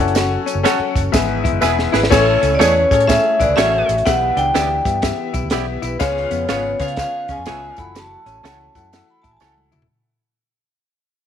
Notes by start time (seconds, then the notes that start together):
Already playing: C#4 E4 A4 F#5
0.00 F#1 F#3 C#4 A4
0.08 closed hi-hat
0.15 F#4, snare, closed hi-hat, tambourine
0.46 C#4, closed hi-hat, tambourine
0.55 F#1
0.63 C#4 F#4 A4 C#5 F#5, snare, closed hi-hat, tambourine
0.79 muted fingered electric bass stroke
0.96 F#1, kick, closed hi-hat, tambourine
1.12 G#1 G#2 E3 B3 G#4 E5, kick, snare, closed hi-hat, tambourine
1.44 E4, kick, closed hi-hat, tambourine
1.52 F#1
1.61 E1 B3 E4 G#4 B4 E5, snare, tambourine
1.79 snare
1.92 G#1 B3 E4 G#4 B4, snare, tambourine
2.03 snare
2.10 A1 A2 A3 C#4 E4 A4 C#5 G#5, kick, snare, crash, tambourine
2.42 C#2 C#4, closed hi-hat, tambourine
2.55 D5
2.59 E2 A3 C#4 E4 G#4 B4 C#5, snare, closed hi-hat, tambourine
2.90 A2 A3 C#4 G#4 A4 C#5, kick, closed hi-hat, tambourine
3.00 closed hi-hat
3.07 A3 C#4 E4 G#4 A4 C#5 E5, kick, snare, closed hi-hat, tambourine
3.39 A1 E4 G#4 B4 D5, kick, closed hi-hat, tambourine
3.49 C#2
3.56 A1 A3 C#4 E4 F#4 G#4 A4 C#5 E5, snare, closed hi-hat, tambourine
3.89 A1, closed hi-hat, tambourine
3.98 closed hi-hat
4.06 B1 B2 E3 B3 G4 E5 F#5, kick, snare, closed hi-hat, tambourine
4.37 C#2 D4 G5, closed hi-hat, tambourine
4.54 D2 B3 D4 E4 G4 D5 E5, snare, closed hi-hat, tambourine
4.85 G2 B3 G4 E5, kick, closed hi-hat, tambourine
5.02 B3 G4 E5, kick, snare, closed hi-hat, tambourine
5.34 B1 E4, kick, closed hi-hat, tambourine
5.43 D2
5.50 B1 B3 E4 G4 D5 E5, snare, closed hi-hat, tambourine
5.82 B1 E4 B4, closed hi-hat, tambourine
5.99 C#2 C#3 C#4 F4 G#4 B4 C#5 F5, kick, snare, closed hi-hat, tambourine
6.17 snare
6.31 F2 B3, closed hi-hat, tambourine
6.49 G#1 B3 C#4 F4 G#4 B4 C#5 F5, snare, closed hi-hat, tambourine
6.79 C#3 C#4 F4 G#4 B4 C#5 F5, kick, closed hi-hat, tambourine
6.88 closed hi-hat
6.96 C#4 F4 G#4 B4 C#5 F5, kick, snare, closed hi-hat, tambourine
7.01 F5
7.28 C#2 C#4 F4 G#4 G#5, kick, closed hi-hat, tambourine
7.38 F2
7.46 C#2 F#3 B3 C#4 F4 G#4 B4 C#5 E5 F5 G#5, snare, closed hi-hat, tambourine
7.76 F#1 E3 A3 E4 F#4 A4 F#5 B5, kick, closed hi-hat, tambourine
7.95 F#4 A5, snare, closed hi-hat, tambourine
8.26 A1 C#4, closed hi-hat, tambourine
8.43 C#2 C#4 E4 A4 C#5 F#5, snare, closed hi-hat, tambourine
8.75 F#2 E4 A4 F#5, kick, closed hi-hat, tambourine
8.93 E4 A4 F#5, snare, closed hi-hat, tambourine
9.10 B5
9.22 A2 E4 A5, kick, closed hi-hat, tambourine
9.31 A1 G#5
9.37 A5, tambourine
9.41 C#2 C#4 E4 A4 C#5 F#5, snare
9.58 high tom
9.72 E1 E4, mid tom, tambourine
9.82 floor tom